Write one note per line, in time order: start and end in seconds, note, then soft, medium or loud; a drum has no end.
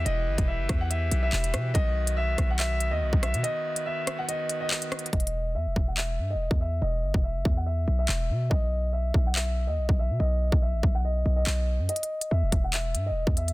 0.00 1.72 E3 medium
0.00 1.72 E4 medium
0.00 1.72 G4 medium
0.00 1.72 B4 medium
0.05 0.29 E1 loud
0.05 0.45 D#5 loud
0.05 closed hi-hat medium
0.27 0.38 G1 loud
0.38 0.61 E1 loud
0.38 kick medium
0.38 closed hi-hat medium
0.48 0.78 E5 medium
0.59 0.69 F#1 loud
0.69 1.10 E2 loud
0.69 kick medium
0.69 cross-stick medium
0.69 closed hi-hat medium
0.81 0.89 F#5 medium
0.90 1.21 E5 medium
0.90 closed hi-hat medium
1.11 1.32 B1 loud
1.11 closed hi-hat medium
1.23 1.72 E5 medium
1.33 1.55 E1 loud
1.33 clap loud
1.44 closed hi-hat medium
1.54 1.74 B2 loud
1.54 cross-stick loud
1.54 closed hi-hat medium
1.74 2.36 B1 loud
1.74 5.10 D#3 medium
1.74 5.10 B3 medium
1.74 5.10 F#4 medium
1.74 2.14 D#5 loud
1.74 kick loud
1.74 closed hi-hat medium
2.07 closed hi-hat medium
2.17 2.47 E5 medium
2.38 2.93 B1 loud
2.38 kick medium
2.38 cross-stick medium
2.38 closed hi-hat medium
2.50 2.58 F#5 medium
2.59 2.90 E5 loud
2.59 clap loud
2.59 closed hi-hat medium
2.80 closed hi-hat medium
2.91 3.03 D#2 loud
2.91 3.21 D#5 medium
3.02 3.12 B1 loud
3.13 3.35 B1 loud
3.13 kick medium
3.23 3.40 E5 medium
3.23 cross-stick loud
3.23 closed hi-hat medium
3.34 3.43 B2 loud
3.34 closed hi-hat medium
3.43 3.83 D#5 loud
3.43 closed hi-hat medium
3.76 closed hi-hat medium
3.86 4.17 E5 medium
4.07 cross-stick medium
4.07 closed hi-hat medium
4.19 4.27 F#5 medium
4.28 4.59 D#5 medium
4.28 closed hi-hat medium
4.49 closed hi-hat medium
4.60 5.10 D#5 medium
4.71 clap loud
4.82 closed hi-hat medium
4.92 cross-stick loud
4.92 closed hi-hat medium
4.99 closed hi-hat medium
5.06 closed hi-hat medium
5.13 5.57 E1 loud
5.13 5.53 D#5 medium
5.13 kick loud
5.13 closed hi-hat medium
5.20 closed hi-hat medium
5.27 closed hi-hat medium
5.55 5.68 E2 loud
5.55 5.86 E5 medium
5.66 5.76 E1 loud
5.76 6.20 E1 loud
5.76 kick medium
5.88 5.96 F#5 medium
5.97 6.28 E5 medium
5.97 clap loud
6.19 6.36 G2 medium
6.30 6.59 D#5 medium
6.35 6.50 E1 loud
6.51 6.81 E2 loud
6.51 kick medium
6.61 6.78 E5 medium
6.81 7.05 E1 loud
6.81 7.21 D#5 medium
7.03 7.14 G1 loud
7.14 7.37 E1 loud
7.14 kick loud
7.24 7.54 E5 medium
7.35 7.45 F#1 loud
7.45 7.86 E2 loud
7.45 kick medium
7.57 7.65 F#5 medium
7.66 7.97 E5 medium
7.88 8.08 B1 loud
7.99 8.48 E5 medium
8.09 8.31 E1 loud
8.09 clap loud
8.30 8.50 B2 loud
8.50 9.12 B1 loud
8.50 8.90 D#5 loud
8.50 kick loud
8.93 9.23 E5 medium
9.14 9.69 B1 loud
9.14 kick medium
9.27 9.34 F#5 medium
9.35 9.66 E5 loud
9.35 clap loud
9.67 9.79 D#2 loud
9.67 9.97 D#5 medium
9.78 9.88 B1 loud
9.89 10.12 B1 loud
9.89 kick medium
9.99 10.16 E5 medium
10.10 10.20 B2 loud
10.19 10.51 B1 loud
10.19 10.59 D#5 medium
10.52 10.75 B1 loud
10.52 kick medium
10.62 10.93 E5 medium
10.73 10.83 A1 loud
10.83 11.24 B1 loud
10.83 kick medium
10.95 11.03 F#5 medium
11.05 11.35 D#5 medium
11.26 11.46 B1 loud
11.36 11.86 D#5 medium
11.47 11.81 B1 loud
11.47 clap loud
11.79 11.88 F#2 loud
11.89 12.29 D#5 medium
11.89 closed hi-hat medium
11.96 closed hi-hat medium
12.03 closed hi-hat medium
12.21 closed hi-hat medium
12.31 12.44 E2 loud
12.31 12.62 E5 medium
12.42 12.52 E1 loud
12.52 12.96 E1 loud
12.52 kick medium
12.52 closed hi-hat medium
12.64 12.72 F#5 medium
12.74 13.04 E5 medium
12.74 clap loud
12.74 closed hi-hat medium
12.95 13.12 G2 loud
12.95 closed hi-hat medium
13.06 13.35 D#5 medium
13.11 13.26 E1 loud
13.27 13.53 E2 loud
13.27 kick medium
13.37 13.53 E5 medium
13.37 closed hi-hat medium
13.48 closed hi-hat medium